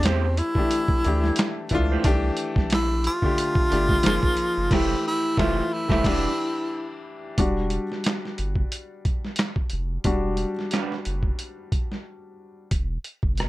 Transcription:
0.00 0.42 E2 medium
0.00 0.36 E3 loud
0.00 0.37 A3 medium
0.00 0.37 D4 medium
0.00 0.38 G4 loud
0.00 closed hi-hat medium
0.05 0.25 A3 medium
0.05 0.40 C4 medium
0.05 0.26 E4 medium
0.05 0.26 G4 loud
0.05 0.26 C5 loud
0.05 snare loud
0.05 clap medium
0.37 1.71 E4 loud
0.37 closed hi-hat medium
0.55 0.97 E3 medium
0.55 0.97 A3 medium
0.55 0.98 D4 medium
0.55 0.99 G4 medium
0.55 kick medium
0.71 closed hi-hat medium
0.88 kick loud
1.04 1.31 D2 medium
1.04 1.62 E3 medium
1.04 1.62 A3 medium
1.04 1.63 D4 medium
1.04 1.63 G4 medium
1.04 closed hi-hat medium
1.24 snare soft
1.36 snare loud
1.36 clap medium
1.36 closed hi-hat medium
1.69 1.98 C#2 loud
1.69 2.00 E3 medium
1.69 2.00 A3 medium
1.69 2.01 D4 medium
1.69 kick medium
1.69 closed hi-hat medium
1.75 2.01 F4 loud
1.92 2.05 A3 medium
1.92 2.04 E4 soft
1.92 2.04 G4 medium
1.92 2.04 C5 medium
2.03 2.31 C2 medium
2.03 2.11 D#3 loud
2.03 3.03 A3 loud
2.03 3.04 D4 loud
2.03 3.04 G4 loud
2.03 kick loud
2.03 closed hi-hat medium
2.10 3.06 E3 loud
2.37 closed hi-hat medium
2.56 3.09 A#1 medium
2.56 kick loud
2.56 snare soft
2.70 3.03 E4 loud
2.70 snare loud
2.70 clap medium
2.70 closed hi-hat medium
3.04 4.75 F4 loud
3.04 closed hi-hat medium
3.22 3.64 D3 medium
3.22 3.64 A3 medium
3.22 3.65 D4 medium
3.22 3.65 G4 medium
3.22 kick medium
3.38 closed hi-hat loud
3.55 kick loud
3.70 3.98 G1 loud
3.70 4.04 D3 medium
3.70 4.04 A3 medium
3.70 4.05 D4 medium
3.70 4.05 G4 medium
3.70 closed hi-hat medium
3.89 kick medium
3.89 snare soft
4.03 4.20 F#1 loud
4.03 4.61 F3 loud
4.03 4.62 A#3 medium
4.03 4.62 D#4 medium
4.03 4.63 G#4 loud
4.03 snare loud
4.03 clap loud
4.03 closed hi-hat medium
4.23 4.35 A#1 loud
4.23 kick medium
4.37 closed hi-hat medium
4.58 4.69 F#1 medium
4.71 4.95 F1 loud
4.71 4.94 E3 loud
4.71 4.95 A3 medium
4.71 4.95 A3 loud
4.71 5.05 E4 loud
4.71 4.96 E4 loud
4.71 4.96 G4 loud
4.71 4.96 G4 medium
4.71 4.96 C5 loud
4.71 kick loud
4.71 snare loud
4.71 crash medium
5.07 5.37 E4 loud
5.37 5.61 F1 loud
5.37 5.61 E3 loud
5.37 5.61 A3 loud
5.37 5.62 A3 loud
5.37 5.62 E4 loud
5.37 5.75 F4 loud
5.37 5.62 G4 medium
5.37 5.62 C5 loud
5.37 kick loud
5.37 snare loud
5.73 7.05 E4 loud
5.88 6.03 F1 loud
5.88 6.01 E3 loud
5.88 6.02 A3 loud
5.88 6.02 A3 medium
5.88 6.03 E4 loud
5.88 6.03 G4 medium
5.88 6.03 C5 loud
5.88 kick loud
5.88 snare loud
6.03 6.28 E1 loud
6.03 6.27 E3 medium
6.03 6.28 D4 medium
6.03 6.29 D4 medium
6.03 6.29 F#4 medium
6.03 6.29 G4 loud
6.03 6.29 B4 medium
6.03 kick loud
6.03 snare loud
6.03 crash medium
6.08 6.29 G3 medium
7.38 7.79 E1 loud
7.38 7.83 G3 medium
7.38 7.84 D4 soft
7.38 7.84 F#4 medium
7.38 kick loud
7.38 closed hi-hat medium
7.70 closed hi-hat medium
7.92 snare soft
8.04 snare loud
8.04 clap medium
8.04 closed hi-hat medium
8.25 snare soft
8.38 8.64 G1 medium
8.38 closed hi-hat medium
8.56 kick medium
8.72 closed hi-hat medium
9.05 kick medium
9.05 closed hi-hat soft
9.25 snare soft
9.36 snare loud
9.36 clap medium
9.36 closed hi-hat medium
9.56 kick medium
9.70 9.98 F1 loud
9.70 closed hi-hat medium
10.04 10.45 E1 loud
10.04 10.50 G3 medium
10.04 10.50 D4 soft
10.04 10.51 F#4 medium
10.04 kick loud
10.04 closed hi-hat medium
10.37 closed hi-hat medium
10.59 snare soft
10.71 10.93 G3 medium
10.71 10.93 D4 medium
10.71 10.94 F#4 medium
10.71 10.94 B4 medium
10.71 snare medium
10.71 clap medium
10.71 closed hi-hat medium
10.92 snare soft
11.05 11.32 F#1 medium
11.05 closed hi-hat medium
11.23 kick medium
11.39 closed hi-hat medium
11.72 kick medium
11.72 closed hi-hat soft
11.92 snare soft
12.71 12.98 E1 medium
12.71 kick medium
12.71 closed hi-hat medium
13.04 closed hi-hat medium
13.23 13.49 F#1 medium
13.23 kick medium
13.38 13.49 B2 medium
13.38 cross-stick medium
13.38 closed hi-hat medium

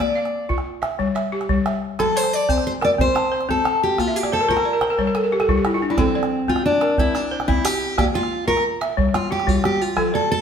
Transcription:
0.00 0.32 A#3 medium
0.00 0.46 D5 medium
0.00 0.49 D5 medium
0.00 0.16 A5 medium
0.15 0.66 F5 medium
0.15 calabash click soft
0.25 calabash click soft
0.49 0.83 F4 medium
0.49 calabash thump medium
0.58 calabash click soft
0.82 1.14 E5 medium
0.82 calabash click medium
0.92 calabash click soft
0.99 1.32 G3 medium
0.99 calabash thump medium
1.15 1.65 E5 medium
1.15 calabash click medium
1.32 1.82 G4 medium
1.32 calabash click soft
1.41 calabash click soft
1.49 1.82 G3 medium
1.49 calabash thump medium
1.66 2.16 E5 medium
1.66 calabash click medium
1.99 2.32 F3 medium
1.99 2.49 A4 medium
1.99 2.17 A4 medium
1.99 calabash thump medium
1.99 calabash click medium
2.16 2.66 C5 medium
2.16 2.33 C5 medium
2.16 calabash click soft
2.24 calabash click soft
2.33 2.50 D5 medium
2.49 2.82 C4 medium
2.49 2.66 C5 medium
2.49 calabash thump medium
2.58 calabash click soft
2.67 2.72 C5 medium
2.81 3.15 A#4 medium
2.81 2.90 D5 medium
2.81 calabash click medium
2.91 calabash click soft
2.98 3.32 C4 medium
2.98 3.50 C5 medium
2.98 calabash thump medium
3.15 3.64 A5 medium
3.15 calabash click medium
3.32 3.82 C5 medium
3.32 calabash click soft
3.41 calabash click soft
3.49 3.82 C4 medium
3.49 3.81 A4 medium
3.49 calabash thump medium
3.65 4.15 A5 medium
3.65 calabash click medium
3.83 4.00 G4 medium
3.98 4.32 A#3 medium
3.98 4.16 F4 medium
3.98 calabash thump medium
3.98 calabash click medium
4.08 4.23 E5 medium
4.16 4.32 G4 medium
4.16 4.31 F5 medium
4.23 4.39 D5 medium
4.23 calabash click soft
4.32 4.50 A4 medium
4.32 4.47 C5 medium
4.32 calabash click soft
4.40 4.55 A#4 medium
4.48 4.82 F4 medium
4.48 5.45 A#4 medium
4.48 4.64 C5 medium
4.48 calabash thump medium
4.57 4.72 A#4 medium
4.57 calabash click soft
4.65 4.81 D5 medium
4.73 4.89 A#4 medium
4.81 4.97 C5 medium
4.81 calabash click medium
4.90 5.06 A#4 medium
4.98 5.32 G3 medium
4.98 5.14 C5 medium
4.98 calabash thump medium
4.98 calabash click soft
5.07 5.22 A#4 medium
5.07 calabash click soft
5.15 5.31 A4 medium
5.15 calabash click medium
5.24 5.39 A#4 medium
5.32 5.48 G4 medium
5.32 calabash click soft
5.40 5.56 A4 medium
5.40 calabash click soft
5.49 5.82 G3 medium
5.49 5.64 F4 medium
5.49 calabash thump medium
5.57 5.72 G4 medium
5.65 5.81 E4 medium
5.65 calabash click medium
5.74 5.89 F4 medium
5.82 5.97 D4 medium
5.82 calabash click soft
5.90 5.98 D4 medium
5.90 6.06 E4 medium
5.90 calabash click soft
5.98 6.32 F3 medium
5.98 6.49 C4 medium
5.98 6.48 A4 medium
5.98 calabash thump medium
5.98 calabash click medium
6.14 6.65 D5 medium
6.14 calabash click soft
6.23 calabash click soft
6.48 6.81 C4 medium
6.48 6.65 F4 medium
6.48 calabash thump medium
6.56 calabash click soft
6.66 6.96 D4 medium
6.81 7.15 A#4 medium
6.81 calabash click medium
6.90 calabash click soft
6.98 7.31 C4 medium
6.98 7.15 E4 medium
6.98 calabash thump medium
7.15 7.49 D4 medium
7.15 7.65 A#5 medium
7.15 calabash click medium
7.31 7.81 C5 medium
7.31 calabash click soft
7.40 calabash click medium
7.48 7.81 C4 medium
7.48 7.64 E4 medium
7.48 calabash thump medium
7.64 7.98 G4 medium
7.64 calabash click medium
7.98 8.31 A#3 medium
7.98 8.04 G4 medium
7.98 8.48 D5 medium
7.98 calabash thump medium
7.98 calabash click medium
8.14 8.47 F4 medium
8.14 8.64 G5 medium
8.14 calabash click soft
8.23 calabash click soft
8.48 8.81 F4 medium
8.48 8.63 A#4 medium
8.48 calabash thump medium
8.57 calabash click soft
8.81 9.14 E5 medium
8.81 calabash click medium
8.90 calabash click soft
8.97 9.31 G3 medium
8.97 calabash thump medium
9.14 9.31 F4 medium
9.14 calabash click medium
9.31 9.81 G4 medium
9.31 9.49 G4 medium
9.31 calabash click soft
9.40 calabash click medium
9.47 9.80 G3 medium
9.47 9.65 F4 medium
9.47 calabash thump medium
9.64 9.81 G4 medium
9.64 calabash click medium
9.81 10.15 F4 medium
9.97 10.30 F3 medium
9.97 10.41 A4 medium
9.97 calabash thump medium
9.97 calabash click medium
10.14 10.30 A4 medium
10.14 10.41 D5 medium
10.14 calabash click soft
10.32 10.41 A4 medium

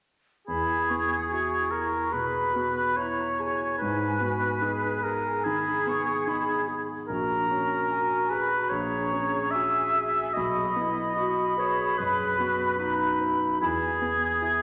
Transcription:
0.47 2.10 E2 soft
0.47 1.26 E4 soft
0.47 1.73 G#4 soft
0.47 0.90 B5 soft
0.89 1.56 B3 soft
0.89 1.29 C#6 soft
1.29 1.98 E4 soft
1.29 1.72 F#4 soft
1.29 2.14 C#6 soft
1.71 2.13 E4 soft
1.71 2.38 G#4 soft
1.71 2.14 A#4 soft
2.12 2.80 B2 soft
2.12 2.55 G#4 soft
2.12 2.98 B4 soft
2.12 2.96 B5 soft
2.54 3.22 B3 soft
2.54 2.95 F#4 soft
2.95 3.80 E4 soft
2.95 3.64 E4 soft
2.95 3.77 C#5 soft
2.95 3.41 A#5 soft
3.39 3.80 G#4 soft
3.39 4.63 G#5 soft
3.78 5.42 G#2 soft
3.78 4.20 D#4 soft
3.78 5.04 B4 soft
4.19 4.87 B3 soft
4.19 4.63 F#4 soft
4.61 5.28 D#4 soft
4.61 5.02 G#4 soft
4.61 5.47 G#5 soft
5.02 6.77 G#4 soft
5.02 5.70 G#4 soft
5.02 5.46 A#4 soft
5.44 6.11 D#3 soft
5.44 6.81 G#4 soft
5.44 5.90 B5 soft
5.87 6.51 B3 soft
5.87 6.29 C#6 soft
6.27 6.92 D#4 soft
6.27 6.82 B5 soft
6.67 7.09 G#4 soft
7.07 8.68 A#1 soft
7.07 7.46 F#4 soft
7.07 8.31 A#4 medium
7.07 7.87 A#5 soft
7.48 8.15 C#4 soft
7.48 8.73 F#4 soft
7.90 8.56 F#4 soft
7.90 8.34 G#5 soft
8.30 8.96 G#4 soft
8.30 8.71 B4 soft
8.30 8.74 B5 soft
8.69 10.31 A#1 soft
8.69 9.11 G#4 soft
8.69 9.52 C#5 medium
8.69 9.56 A#5 soft
9.11 9.78 C#4 soft
9.11 10.32 G#4 soft
9.51 10.19 F#4 soft
9.51 10.35 E5 medium
9.51 10.35 G#5 soft
9.95 10.35 G#4 soft
10.34 11.95 B1 soft
10.34 10.77 F#4 soft
10.34 11.57 D#5 medium
10.34 11.15 B5 soft
10.76 11.41 B3 soft
10.76 11.15 E4 soft
11.15 11.58 F#4 soft
11.15 11.82 F#4 soft
11.15 12.77 B5 soft
11.56 11.96 G#4 soft
11.56 12.23 B4 soft
11.56 11.99 C#5 soft
11.96 12.64 F#2 soft
11.96 12.40 G#4 soft
11.96 13.34 B4 medium
12.38 13.05 B3 soft
12.38 12.78 F#4 soft
12.79 13.59 D#4 soft
12.79 13.45 F#4 soft
12.79 13.60 B5 soft
13.20 13.61 B4 soft
13.60 14.62 E2 soft
13.60 13.91 E4 soft
13.60 14.62 G#4 medium
13.60 14.00 B5 soft
14.02 14.62 B3 soft
14.42 14.62 E4 soft

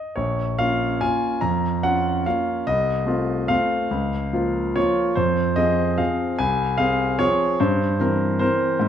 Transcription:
0.00 0.16 D#5 medium
0.16 0.57 A#1 medium
0.16 0.58 C#5 medium
0.59 0.98 A#3 soft
0.59 0.98 C#4 soft
0.59 0.98 F4 soft
0.59 1.01 F5 medium
1.01 1.39 A#3 soft
1.01 1.39 C#4 soft
1.01 1.39 F4 soft
1.01 1.42 G#5 medium
1.41 1.82 F2 medium
1.41 1.82 A#5 medium
1.83 2.21 C#4 soft
1.83 2.22 F4 soft
1.83 2.25 F#5 medium
2.26 2.63 A#3 soft
2.26 2.64 C#4 soft
2.26 2.64 F4 soft
2.26 2.67 F5 medium
2.67 3.06 C2 medium
2.67 3.50 D#5 medium
3.06 3.45 A3 soft
3.06 3.45 C4 soft
3.06 3.46 F4 soft
3.48 3.88 A3 soft
3.48 3.88 C4 soft
3.48 3.88 F4 soft
3.48 4.75 F5 medium
3.91 4.32 C#2 medium
4.33 4.72 F3 soft
4.33 4.72 A#3 soft
4.33 4.72 F4 soft
4.76 5.13 F3 soft
4.76 5.13 A#3 soft
4.76 5.14 F4 soft
4.76 5.17 C#5 medium
5.15 5.56 F2 medium
5.15 5.57 C5 medium
5.56 5.96 F3 soft
5.56 5.96 C4 soft
5.56 5.96 G#4 medium
5.56 5.99 D#5 medium
5.98 6.36 F3 soft
5.98 6.36 C4 soft
5.98 6.36 G#4 soft
5.98 6.39 F5 medium
6.39 6.79 C2 medium
6.39 6.80 G#5 medium
6.78 7.17 C4 soft
6.78 7.17 G#4 soft
6.78 7.20 F5 medium
7.19 7.57 F3 soft
7.19 7.57 C4 soft
7.19 7.57 G#4 medium
7.19 7.60 C#5 medium
7.60 7.99 G2 medium
7.60 8.38 C5 medium
8.00 8.37 E3 soft
8.00 8.37 C4 soft
8.00 8.37 A#4 medium
8.39 8.77 E3 soft
8.39 8.77 C4 medium
8.39 8.77 A#4 medium
8.39 8.88 C5 medium
8.80 8.88 G#2 medium

